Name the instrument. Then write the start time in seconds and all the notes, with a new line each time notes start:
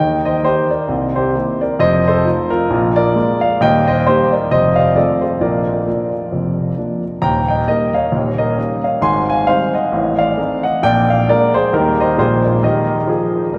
grand piano
Already playing: D#2 D#3 G5
0.00 D#5
0.25 C5 D#5
0.43 A#3 D#4 G4 C5
0.71 A#4 D5
0.88 C2 C3
1.16 G4 C5
1.35 A#3 E4 G4
1.61 A#4 D5
1.79 F1 F2 C5 D#5
2.08 A4 C5
2.25 A3 D#4 F4
2.50 F4 A#4
2.70 A#1 A#2
2.96 A#4 D5
3.15 G#3 A#3 F4
3.41 D5 F5
3.61 D#1 D#2 D#5 G5
3.88 C5 D#5
4.06 G3 A#3 D#4 G4 C5
4.32 A#4 D5
4.51 F1 F2 C5 D#5
4.76 D5 F5
4.95 F3 A3 C4 A4 D5
5.21 A4 C5
5.41 A#1 A#2 A#4 D5
5.86 F3 A#3 D4
6.32 F1 F2
6.77 F3 A#3 D4
7.22 D#1 D#2 G5 A#5
7.49 D#5 G5
7.67 G3 A#3 D#4 A#4 D#5
7.94 C#5 F5
8.12 D#1 D#2
8.38 A#4 D#5
8.57 G3 C#4 D#4
8.84 C#5 F5
9.01 G#1 G#2 G#5 C6
9.30 F5 G#5
9.47 G3 C4 D#4 C5 F5
9.74 D#5 F#5
9.92 A1 A2
10.19 D5 F5
10.37 A3 C4 D#4
10.63 D#5 F#5
10.83 A#1 A#2 D5 G5
11.10 D5 F5
11.29 G#3 A#3 D4 A#4 D5
11.54 G#4 C5
11.73 D#2 D#3 G3 A#3 D#4 G4 A#4
12.01 C5 D#5
12.18 A#1 A#2 G#3 A#3 F4 G#4 C5
12.45 A#4 D5
12.63 D#3 G4 A#4 D#5
13.07 F3 G#4
13.53 G3 A#4